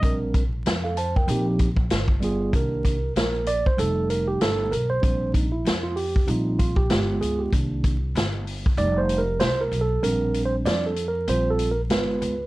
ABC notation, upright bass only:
X:1
M:4/4
L:1/16
Q:"Swing 16ths" 1/4=96
K:Cdor
V:1 name="Upright bass" clef=bass
B,,,4 F,,4 B,,,4 G,,,4 | C,,4 B,,,3 z F,,,4 G,,,2 =B,,,2 | B,,,4 F,,4 B,,,4 G,,,2 _D,,2 | C,,4 G,,,4 F,,,4 C,,2 =B,,,2 |
B,,,4 F,,4 B,,,4 G,,,2 _D,,2 |]